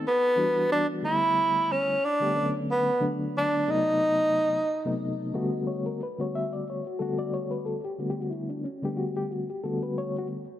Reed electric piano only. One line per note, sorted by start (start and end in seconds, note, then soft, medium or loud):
0.36 1.02 E3 medium
0.36 1.01 G3 medium
0.36 1.03 B3 medium
0.36 1.03 D4 medium
0.36 1.03 F#4 medium
1.03 1.97 D3 medium
1.03 1.97 G3 medium
1.03 1.97 A3 medium
1.03 1.97 B3 medium
1.03 1.97 E4 medium
2.20 2.34 D3 medium
2.20 2.36 G3 medium
2.20 2.34 A3 medium
2.20 2.35 B3 medium
2.20 2.37 G4 medium
2.35 2.90 D3 medium
2.35 2.90 F#3 medium
2.35 2.90 A3 medium
2.35 2.90 B3 medium
2.35 2.91 C#4 medium
3.00 3.67 D3 medium
3.00 3.66 F#3 medium
3.00 3.67 A3 medium
3.00 3.67 B3 medium
3.00 3.67 D4 medium
3.67 4.61 C3 medium
3.67 4.62 F#3 medium
3.67 4.62 A3 medium
3.67 4.62 B3 medium
3.67 4.62 D#4 medium
4.85 5.34 C3 medium
4.85 5.34 F#3 medium
4.85 5.33 A3 medium
4.85 5.33 B3 medium
4.85 5.35 D#4 loud
5.33 5.99 D3 medium
5.33 5.99 G3 medium
5.33 5.99 A3 medium
5.33 6.00 B3 medium
5.33 6.00 F#4 loud
5.67 5.85 C#5 medium
5.86 6.00 A#4 medium
6.03 6.19 B4 medium
6.18 6.83 D3 medium
6.18 6.84 G3 medium
6.18 6.84 A3 medium
6.18 6.84 B3 medium
6.18 6.84 F#4 medium
6.18 6.34 C#5 medium
6.35 6.52 E5 medium
6.53 6.67 D5 medium
6.70 6.86 C#5 medium
6.87 7.00 F#4 medium
6.99 7.79 D3 medium
6.99 7.79 G3 medium
6.99 7.80 A3 medium
6.99 7.80 B3 medium
6.99 7.80 F#4 medium
6.99 7.17 A4 medium
7.19 7.33 D5 medium
7.34 7.51 C#5 medium
7.51 7.65 B4 medium
7.66 7.83 A4 medium
7.85 7.99 G4 medium
7.99 8.64 D3 medium
7.99 8.64 G3 medium
7.99 8.65 A3 medium
7.99 8.65 B3 medium
7.99 8.10 F#4 medium
8.10 8.21 G4 medium
8.21 8.32 F#4 medium
8.31 8.49 E4 medium
8.50 8.64 D4 medium
8.64 8.82 C#4 medium
8.82 9.48 D3 medium
8.82 9.48 G3 medium
8.82 9.48 A3 medium
8.82 9.49 B3 medium
8.82 8.98 D4 medium
8.82 9.15 G4 medium
8.97 9.15 F#4 medium
9.17 9.31 G4 medium
9.31 9.49 F#4 medium
9.50 9.64 G4 medium
9.64 10.43 D3 medium
9.64 10.44 G3 medium
9.64 10.44 A3 medium
9.64 10.44 B3 medium
9.64 10.17 F#4 medium
9.64 9.82 A4 medium
9.83 9.97 B4 medium
9.98 10.15 C#5 loud
10.18 10.27 F#4 medium